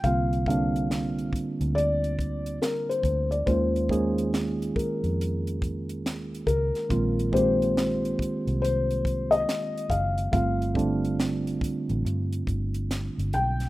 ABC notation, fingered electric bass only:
X:1
M:4/4
L:1/16
Q:"Swing 16ths" 1/4=70
K:Cm
V:1 name="Fingered electric bass" clef=bass
C,,6 z D,,4- D,, z2 D,,2 | E,,6 z F,,4- F,, E,,2 _D,, z | B,,,6 z C,,4- C,, z2 ^F,,,2 | G,,,6 z =A,,, G,,2 G,,,3 G,,, =B,,,2 |]